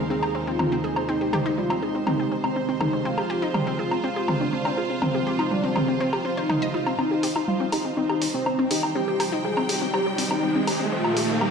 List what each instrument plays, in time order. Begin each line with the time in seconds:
Already playing: analog synth pad D#2 C3 D#3 G#3 D#4 G#4, string section D#4 A#4 C5 F5
0.10 synth arpeggio sound C4, analog synth lead G#4
0.23 synth arpeggio sound G4, low woodblock
0.35 synth arpeggio sound C4
0.47 synth arpeggio sound C4, analog synth lead F4
0.59 synth arpeggio sound C4, mid tom, low woodblock
0.72 synth arpeggio sound C4
0.84 analog synth lead G#4, synth arpeggio sound G#4
0.96 synth arpeggio sound C4, low woodblock
1.08 synth arpeggio sound C4, analog synth lead D#4, analog synth pad G4
1.21 synth arpeggio sound G4
1.33 synth arpeggio sound G4, mid tom, low woodblock
1.46 synth arpeggio sound D#4
1.58 synth arpeggio sound G3, analog synth lead F4
1.70 synth arpeggio sound C4, low woodblock
1.82 analog synth lead D#4, synth arpeggio sound G#4
1.95 synth arpeggio sound C4
2.07 synth arpeggio sound C4, analog synth lead D#4, mid tom, low woodblock
2.20 synth arpeggio sound G4
2.32 synth arpeggio sound C4
2.44 synth arpeggio sound C4, analog synth lead C4, low woodblock
2.56 synth arpeggio sound C4
2.69 synth arpeggio sound C4
2.81 analog synth lead D#4, synth arpeggio sound G#4, mid tom, low woodblock
2.93 synth arpeggio sound C4
3.05 analog synth pad F3 F4 G#4, synth arpeggio sound C4, analog synth lead F4, string section F4
3.18 synth arpeggio sound G4, low woodblock
3.30 synth arpeggio sound G4
3.42 synth arpeggio sound D#4
3.54 synth arpeggio sound G3, analog synth lead G4, mid tom, low woodblock
3.67 synth arpeggio sound C4
3.79 analog synth lead F4, synth arpeggio sound G#4
3.91 synth arpeggio sound C4, low woodblock
4.03 synth arpeggio sound C4, analog synth lead F4
4.16 synth arpeggio sound G4
4.28 synth arpeggio sound C4, mid tom, low woodblock
4.41 synth arpeggio sound C4, analog synth lead D4
4.53 synth arpeggio sound C4
4.65 synth arpeggio sound C4, low woodblock
4.77 analog synth lead F4, synth arpeggio sound G#4
4.90 synth arpeggio sound C4
5.02 analog synth lead C4, synth arpeggio sound C4, analog synth pad G4, mid tom, low woodblock
5.15 synth arpeggio sound G4
5.27 synth arpeggio sound G4
5.39 synth arpeggio sound D#4, low woodblock
5.51 synth arpeggio sound G3, analog synth lead D4
5.64 synth arpeggio sound C4
5.76 analog synth lead C4, synth arpeggio sound G#4, mid tom, low woodblock
5.88 synth arpeggio sound C4
6.00 analog synth lead C4, synth arpeggio sound C4
6.13 synth arpeggio sound G4, low woodblock
6.25 synth arpeggio sound C4
6.37 analog synth lead D#4, synth arpeggio sound C5
6.49 synth arpeggio sound D#4, mid tom, low woodblock
6.62 synth arpeggio sound D#5
6.74 synth arpeggio sound D#4, analog synth lead F4
6.87 synth arpeggio sound C4, low woodblock
6.99 analog synth pad C3 D#3 G3 D#4 G4, synth arpeggio sound C4, string section D#4, analog synth lead D#4, riser, low woodblock
7.11 synth arpeggio sound G4
7.23 synth arpeggio sound G4, open hi-hat
7.36 synth arpeggio sound D#4, low woodblock
7.48 synth arpeggio sound G3, analog synth lead F4
7.60 synth arpeggio sound C4
7.72 analog synth lead D#4, synth arpeggio sound G4, open hi-hat, low woodblock
7.85 synth arpeggio sound C4
7.97 synth arpeggio sound C4, analog synth lead D#4
8.10 synth arpeggio sound G4, low woodblock
8.22 synth arpeggio sound C4, open hi-hat
8.34 synth arpeggio sound C4, analog synth lead C4
8.46 synth arpeggio sound C4, low woodblock
8.59 synth arpeggio sound C4
8.65 string section G5
8.71 analog synth lead D#4, synth arpeggio sound G4, open hi-hat
8.83 synth arpeggio sound C4, low woodblock
8.95 synth arpeggio sound C4, analog synth pad F4, analog synth lead G4
9.08 synth arpeggio sound G4
9.20 synth arpeggio sound G4, open hi-hat, low woodblock
9.32 synth arpeggio sound D#4
9.44 synth arpeggio sound G3, analog synth lead G#4
9.57 synth arpeggio sound C4, low woodblock
9.69 analog synth lead G4, synth arpeggio sound G4, open hi-hat
9.82 synth arpeggio sound C4
9.94 synth arpeggio sound C4, analog synth lead G4, low woodblock
10.06 synth arpeggio sound G4
10.18 synth arpeggio sound C4, open hi-hat
10.31 synth arpeggio sound C4, analog synth lead D#4, low woodblock
10.43 synth arpeggio sound C4
10.55 synth arpeggio sound C4
10.67 analog synth lead G4, synth arpeggio sound G4, open hi-hat, low woodblock
10.80 synth arpeggio sound C4
10.92 analog synth pad A#2 F3 D#4 F4, synth arpeggio sound C4, analog synth lead F4
11.03 synth arpeggio sound G4, string section A#4, low woodblock
11.17 synth arpeggio sound G4, open hi-hat
11.26 synth arpeggio sound D#4, string section F5
11.41 synth arpeggio sound G3, analog synth lead G4, low woodblock